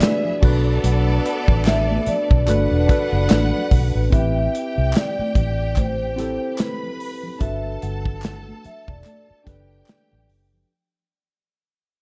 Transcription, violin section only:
0.00 0.39 B3 medium
0.00 0.39 G#4 medium
0.00 0.39 E5 loud
0.42 2.44 B3 medium
0.42 2.44 A4 loud
0.42 2.44 D5 loud
2.48 4.09 D4 medium
2.48 4.09 B4 medium
2.48 4.09 F#5 loud
4.13 6.55 G4 medium
4.13 6.55 G5 medium
6.59 7.39 B4 medium
6.59 7.39 B5 loud
7.40 9.42 A4 medium
7.40 9.42 A5 medium
9.45 10.66 G4 medium
9.45 10.66 G5 medium

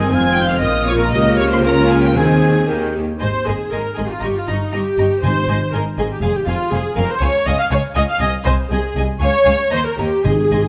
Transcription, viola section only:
0.00 1.09 C4 medium
0.00 0.13 D#4 medium
0.13 0.62 F4 medium
0.63 1.12 F4 medium
1.13 1.63 A#3 medium
1.13 1.64 G4 medium
1.63 2.16 C#4 medium
1.63 2.16 F4 medium
2.16 2.67 C4 medium
2.16 2.67 G#4 medium
2.68 3.00 A#3 medium
2.68 3.00 G4 medium
3.21 3.45 C5 medium
3.47 3.73 G#4 medium
3.72 3.98 A#4 medium
3.98 4.11 G#4 medium
4.11 4.23 F4 medium
4.24 4.36 G4 medium
4.36 4.48 F4 medium
4.49 4.74 D#4 medium
4.74 5.24 G4 medium
5.23 5.72 C5 medium
5.73 5.81 A#4 medium
5.98 6.03 G#4 medium
6.11 6.23 G4 medium
6.22 6.35 G#4 medium
6.35 6.47 G4 medium
6.47 6.72 F4 medium
6.73 6.97 G#4 medium
6.97 7.09 A#4 medium
7.10 7.22 C5 medium
7.22 7.46 C#5 medium
7.46 7.58 D#5 medium
7.59 7.64 F5 medium
7.71 7.79 C#5 medium
7.96 8.01 D#5 medium
8.09 8.21 F5 medium
8.22 8.30 D#5 medium
8.46 8.54 C5 medium
8.71 8.95 G#4 medium
9.22 9.69 C#5 medium
9.73 9.86 C5 medium
9.86 9.99 A#4 medium
9.99 10.25 G4 medium
10.25 10.68 G#4 medium

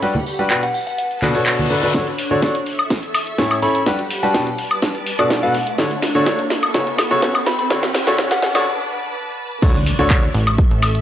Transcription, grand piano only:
0.02 0.13 G3 medium
0.02 0.13 D4 medium
0.02 0.13 F#4 medium
0.02 0.13 G4 medium
0.02 0.13 B4 medium
0.39 0.48 G3 medium
0.39 0.48 D4 medium
0.39 0.48 F#4 medium
0.39 0.48 G4 medium
0.39 0.48 B4 medium
0.50 0.61 B2 medium
0.50 0.61 D4 medium
0.50 0.61 F#4 medium
0.50 0.61 G4 medium
0.50 0.61 B4 medium
1.22 1.33 B2 medium
1.22 1.33 D4 medium
1.22 1.33 F#4 medium
1.22 1.33 A4 medium
1.22 1.33 B4 medium
1.35 1.68 B2 medium
1.35 1.68 D4 medium
1.35 1.68 F#4 medium
1.35 1.68 A4 medium
1.35 1.68 C#5 medium
1.70 1.81 D3 medium
1.70 1.81 D4 medium
1.70 1.81 F#4 medium
1.70 1.81 A4 medium
1.70 1.81 B4 medium
1.83 1.93 D3 medium
1.83 1.93 D4 medium
1.83 1.93 F#4 medium
1.83 1.93 A4 medium
1.83 1.93 B4 loud
1.94 2.05 D3 medium
1.94 2.05 D4 medium
1.94 2.05 F#4 medium
1.94 2.05 A4 medium
1.94 2.05 C#5 medium
2.31 2.40 D3 medium
2.31 2.40 D4 medium
2.31 2.40 F#4 medium
2.31 2.40 A4 medium
2.31 2.40 C#5 loud
2.42 2.53 D4 medium
2.42 2.53 F#4 medium
2.42 2.53 A4 medium
2.42 2.53 C#5 medium
3.38 3.55 A2 medium
3.38 3.55 C#4 medium
3.38 3.55 E4 medium
3.38 3.55 A4 medium
3.38 3.55 C#5 loud
3.62 3.79 C#4 medium
3.62 3.79 E4 medium
3.62 3.79 A4 medium
3.62 3.79 C#5 medium
3.86 3.97 G3 medium
3.86 3.97 D4 medium
3.86 3.97 F#4 medium
3.86 3.97 G4 medium
3.86 3.97 B4 medium
4.23 4.32 G3 medium
4.23 4.32 D4 medium
4.23 4.32 F#4 medium
4.23 4.32 G4 medium
4.23 4.32 B4 medium
4.34 4.45 B2 medium
4.34 4.45 D4 medium
4.34 4.45 F#4 medium
4.34 4.45 G4 medium
4.34 4.45 B4 loud
5.19 5.40 B2 medium
5.19 5.40 D4 medium
5.19 5.40 F#4 medium
5.19 5.40 A4 medium
5.19 5.40 D5 medium
5.43 5.53 B2 medium
5.43 5.53 D4 medium
5.43 5.53 F#4 medium
5.43 5.53 A4 medium
5.43 5.53 B4 medium
5.78 5.89 D3 medium
5.78 5.89 D4 medium
5.78 5.89 F#4 medium
5.78 5.89 A4 medium
5.78 5.89 C#5 medium
6.15 6.24 D3 medium
6.15 6.24 D4 medium
6.15 6.24 F#4 medium
6.15 6.24 A4 medium
6.15 6.24 C#5 medium
6.26 6.37 D4 medium
6.26 6.37 F#4 medium
6.26 6.37 C#5 medium
6.74 6.85 C#3 medium
6.74 6.85 C#4 medium
6.74 6.85 F#4 medium
6.74 6.85 A4 medium
6.74 6.85 C#5 medium
7.11 7.20 C#3 medium
7.11 7.20 C#4 medium
7.11 7.20 F#4 medium
7.11 7.20 A4 medium
7.11 7.20 C#5 loud
7.22 7.33 C#4 medium
7.22 7.33 F#4 medium
7.22 7.33 A4 medium
7.22 7.33 C#5 medium
7.70 7.81 D3 medium
7.70 7.81 D4 medium
7.70 7.81 F#4 medium
7.70 7.81 A4 medium
7.70 7.81 C#5 medium
8.07 8.16 D3 medium
8.07 8.16 D4 medium
8.07 8.16 F#4 medium
8.07 8.16 A4 medium
8.07 8.16 C#5 loud
8.18 8.29 F#4 medium
8.18 8.29 A4 medium
8.18 8.29 C#5 medium
8.55 8.64 D3 medium
8.55 8.64 D4 medium
8.55 8.64 F#4 medium
8.55 8.64 A4 medium
8.55 8.64 C#5 loud
9.62 9.73 D3 medium
9.62 9.73 D4 medium
9.62 9.73 F#4 medium
9.62 9.73 A4 medium
9.62 9.73 C#5 medium
9.99 10.08 D3 loud
9.99 10.08 D4 medium
9.99 10.08 F#4 medium
9.99 10.08 A4 medium
9.99 10.08 C#5 loud
10.10 10.21 D4 medium
10.10 10.21 F#4 medium
10.10 10.21 A4 medium

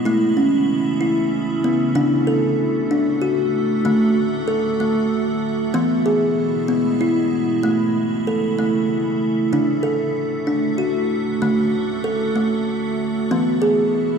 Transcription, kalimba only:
0.05 1.92 A3 medium
0.05 0.37 E4 medium
0.37 1.00 C#4 medium
1.01 1.64 E4 medium
1.64 1.96 B3 medium
1.95 3.81 D3 medium
1.95 2.27 D4 medium
2.27 2.90 A4 medium
2.91 3.22 D4 medium
3.21 3.85 F#4 medium
3.85 5.71 D3 medium
3.85 4.48 A3 medium
4.48 4.79 A4 medium
4.80 5.43 A3 medium
5.74 7.60 E3 medium
5.74 6.06 B3 medium
6.06 6.69 G#4 medium
6.68 7.00 B3 medium
7.01 7.64 E4 medium
7.63 8.26 A3 medium
8.27 8.58 A4 medium
8.59 9.21 A3 medium
9.53 11.38 D3 medium
9.53 9.84 D4 medium
9.83 10.47 A4 medium
10.47 10.79 D4 medium
10.78 11.41 F#4 medium
11.42 13.27 D3 medium
11.42 12.05 A3 medium
12.04 12.36 A4 medium
12.36 12.99 A3 medium
13.31 14.18 E3 medium
13.31 13.62 B3 medium
13.62 14.18 G#4 medium

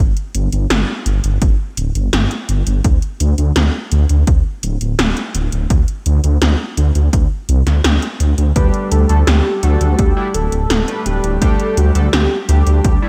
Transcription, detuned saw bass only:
0.00 0.13 G1 loud
0.35 0.48 G1 medium
0.52 0.66 G1 medium
0.70 0.84 G1 loud
1.06 1.20 G1 medium
1.24 1.38 G1 medium
1.42 1.55 G1 loud
1.77 1.91 D1 loud
1.95 2.09 G1 medium
2.13 2.27 G1 loud
2.49 2.63 G1 loud
2.67 2.80 G1 medium
2.85 2.98 D2 loud
3.20 3.34 D2 medium
3.38 3.52 D2 medium
3.56 3.70 D2 loud
3.92 4.05 D2 medium
4.10 4.23 D2 medium
4.27 4.41 D2 loud
4.63 4.77 D1 medium
4.81 4.95 D1 medium
4.99 5.13 D1 loud
5.35 5.48 D1 medium
5.52 5.66 D1 medium
5.70 5.84 D2 loud
6.06 6.20 D2 medium
6.24 6.38 D2 medium
6.42 6.55 D2 loud
6.77 6.91 D2 medium
6.95 7.09 D2 medium
7.13 7.27 D2 loud
7.49 7.63 C2 medium
7.67 7.80 D2 medium
7.84 7.98 D2 loud
8.20 8.34 D2 medium
8.38 8.52 D2 medium
8.56 8.70 D2 loud
8.92 9.05 D2 medium
9.09 9.23 D2 medium
9.27 9.41 D2 loud
9.63 9.77 D2 medium
9.81 9.95 D2 medium
9.99 10.13 D2 loud
10.34 10.48 D1 loud
10.52 10.66 D1 medium
10.70 10.84 D1 loud
11.06 11.20 D1 medium
11.24 11.38 D1 medium
11.42 11.55 D2 loud
11.77 11.91 D2 medium
11.95 12.09 D2 medium
12.13 12.27 D2 loud
12.49 12.63 D2 medium
12.67 12.80 D2 medium
12.84 12.98 D2 loud

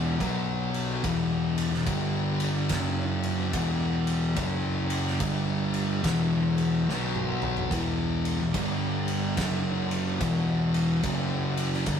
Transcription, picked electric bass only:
0.00 0.16 E1 medium
0.20 1.00 B1 medium
1.04 1.68 E1 medium
1.70 1.85 E1 medium
1.87 2.67 G1 medium
2.70 3.50 F#1 loud
3.53 4.33 E1 medium
4.36 5.16 F#1 medium
5.20 6.00 G1 medium
6.03 6.83 E1 loud
6.87 7.67 B1 medium
7.72 8.36 E1 medium
8.40 8.53 E1 medium
8.54 9.33 G1 medium
9.37 10.16 F#1 medium
10.20 11.00 E1 medium
11.03 11.83 F#1 medium
11.87 12.00 G1 loud

